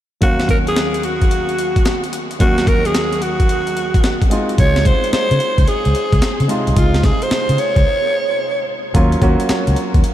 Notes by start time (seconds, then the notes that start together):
0.21 D#2 F#3 A#3 C#4 F#4 F5, kick, closed hi-hat
0.40 snare, closed hi-hat
0.49 A#4, kick, closed hi-hat
0.67 G#4, closed hi-hat
0.76 snare, closed hi-hat
0.94 closed hi-hat
1.03 F#4, closed hi-hat
1.22 kick, closed hi-hat
1.31 closed hi-hat
1.49 closed hi-hat
1.58 closed hi-hat
1.76 kick, closed hi-hat
1.85 snare, closed hi-hat
2.04 closed hi-hat
2.13 closed hi-hat
2.31 closed hi-hat
2.39 D#2 F#3 A#3 C#4 F#4, kick, closed hi-hat
2.58 snare, closed hi-hat
2.67 A#4, kick, closed hi-hat
2.85 G#4, closed hi-hat
2.94 snare, closed hi-hat
3.13 closed hi-hat
3.22 F#4, closed hi-hat
3.40 kick, closed hi-hat
3.49 closed hi-hat
3.67 closed hi-hat
3.77 closed hi-hat
3.94 kick, closed hi-hat
4.04 snare, closed hi-hat
4.22 kick, closed hi-hat
4.30 G#3 C4 D#4 F4, closed hi-hat
4.49 closed hi-hat
4.58 C#2 C#5, kick, closed hi-hat
4.76 snare, closed hi-hat
4.85 C5, kick, closed hi-hat
5.04 closed hi-hat
5.13 C5, muted fingered electric bass stroke, snare, closed hi-hat
5.31 C#3, closed hi-hat
5.40 closed hi-hat
5.58 C#2, kick, closed hi-hat
5.67 G#4, closed hi-hat
5.85 C#2, closed hi-hat
5.95 closed hi-hat
6.13 C#2, kick, closed hi-hat
6.22 snare, closed hi-hat
6.40 C#3, closed hi-hat
6.48 C3 G#3 D#4 F4, closed hi-hat
6.67 C2, closed hi-hat
6.76 C#2 F4, kick, closed hi-hat
6.94 snare, closed hi-hat
7.03 G#4, kick, snare, closed hi-hat
7.22 C5, closed hi-hat
7.31 muted fingered electric bass stroke, snare, closed hi-hat
7.49 C#3, closed hi-hat
7.58 C#5, closed hi-hat
7.76 C#2, kick, closed hi-hat
8.94 D#2 F#3 A#3 C#4 F4, kick, closed hi-hat
9.12 closed hi-hat
9.21 D#2 F#3 A#3 C#4 F#4, kick, closed hi-hat
9.40 closed hi-hat
9.49 muted fingered electric bass stroke, snare, closed hi-hat
9.67 C#2, closed hi-hat
9.76 closed hi-hat
9.94 D#2, kick, closed hi-hat
10.04 closed hi-hat